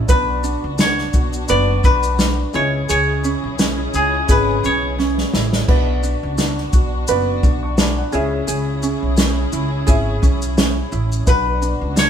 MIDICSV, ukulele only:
0, 0, Header, 1, 2, 480
1, 0, Start_track
1, 0, Tempo, 698487
1, 63, Time_signature, 4, 2, 24, 8
1, 8314, End_track
2, 0, Start_track
2, 0, Title_t, "Ukulele"
2, 0, Program_c, 0, 24
2, 0, Note_on_c, 0, 61, 68
2, 0, Note_on_c, 0, 64, 59
2, 59, Note_on_c, 0, 71, 79
2, 112, Note_off_c, 0, 64, 0
2, 115, Note_off_c, 0, 61, 0
2, 300, Note_on_c, 0, 62, 58
2, 529, Note_off_c, 0, 62, 0
2, 537, Note_on_c, 0, 62, 67
2, 785, Note_on_c, 0, 66, 58
2, 1017, Note_off_c, 0, 71, 0
2, 1025, Note_on_c, 0, 71, 83
2, 1260, Note_off_c, 0, 62, 0
2, 1268, Note_on_c, 0, 62, 58
2, 1497, Note_off_c, 0, 62, 0
2, 1506, Note_on_c, 0, 62, 72
2, 1745, Note_on_c, 0, 68, 75
2, 1746, Note_off_c, 0, 71, 0
2, 1798, Note_off_c, 0, 62, 0
2, 1799, Note_off_c, 0, 66, 0
2, 1978, Note_off_c, 0, 68, 0
2, 1986, Note_on_c, 0, 68, 81
2, 2227, Note_on_c, 0, 61, 59
2, 2461, Note_off_c, 0, 61, 0
2, 2469, Note_on_c, 0, 61, 69
2, 2705, Note_on_c, 0, 64, 57
2, 2938, Note_off_c, 0, 68, 0
2, 2947, Note_on_c, 0, 68, 85
2, 3180, Note_off_c, 0, 61, 0
2, 3188, Note_on_c, 0, 61, 56
2, 3418, Note_off_c, 0, 61, 0
2, 3426, Note_on_c, 0, 61, 66
2, 3658, Note_off_c, 0, 64, 0
2, 3666, Note_on_c, 0, 64, 58
2, 3905, Note_on_c, 0, 71, 78
2, 3907, Note_off_c, 0, 68, 0
2, 3959, Note_off_c, 0, 64, 0
2, 3960, Note_off_c, 0, 61, 0
2, 4145, Note_on_c, 0, 62, 60
2, 4375, Note_off_c, 0, 62, 0
2, 4383, Note_on_c, 0, 62, 64
2, 4628, Note_on_c, 0, 66, 57
2, 4860, Note_off_c, 0, 71, 0
2, 4868, Note_on_c, 0, 71, 82
2, 5099, Note_off_c, 0, 62, 0
2, 5107, Note_on_c, 0, 62, 57
2, 5336, Note_off_c, 0, 62, 0
2, 5344, Note_on_c, 0, 62, 70
2, 5583, Note_on_c, 0, 68, 74
2, 5588, Note_off_c, 0, 71, 0
2, 5639, Note_off_c, 0, 62, 0
2, 5641, Note_off_c, 0, 66, 0
2, 5815, Note_off_c, 0, 68, 0
2, 5824, Note_on_c, 0, 68, 76
2, 6065, Note_on_c, 0, 61, 61
2, 6295, Note_off_c, 0, 61, 0
2, 6304, Note_on_c, 0, 61, 67
2, 6545, Note_on_c, 0, 64, 61
2, 6773, Note_off_c, 0, 68, 0
2, 6781, Note_on_c, 0, 68, 81
2, 7014, Note_off_c, 0, 61, 0
2, 7022, Note_on_c, 0, 61, 58
2, 7257, Note_off_c, 0, 61, 0
2, 7265, Note_on_c, 0, 61, 70
2, 7495, Note_off_c, 0, 64, 0
2, 7503, Note_on_c, 0, 64, 58
2, 7744, Note_off_c, 0, 68, 0
2, 7746, Note_on_c, 0, 71, 84
2, 7798, Note_off_c, 0, 64, 0
2, 7799, Note_off_c, 0, 61, 0
2, 7983, Note_on_c, 0, 62, 59
2, 8211, Note_off_c, 0, 62, 0
2, 8220, Note_on_c, 0, 62, 71
2, 8314, Note_off_c, 0, 62, 0
2, 8314, Note_off_c, 0, 71, 0
2, 8314, End_track
0, 0, End_of_file